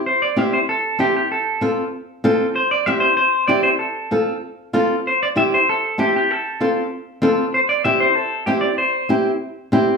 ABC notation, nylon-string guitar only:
X:1
M:4/4
L:1/8
Q:1/4=192
K:C
V:1 name="Nylon-string guitar"
z2 [CEG] z3 [CEG] z | z2 [CFA] z3 [CFA] z | z2 [CEG] z3 [CEG] z | z2 [CFA] z3 [CFA] z |
z2 [CEG] z3 [CEG] z | z2 [CFA] z3 [CFA] z | z2 [CEG] z3 [CEG] z | z2 [CEG] z3 [CEG] z |]